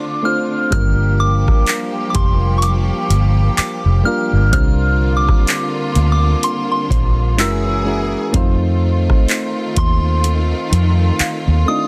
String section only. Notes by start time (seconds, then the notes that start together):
Already playing: D3 D4 F4
0.72 F3 A#3 G4
4.53 D3 A#3 F4
7.39 E3 G#4
8.34 D#3 A3 F4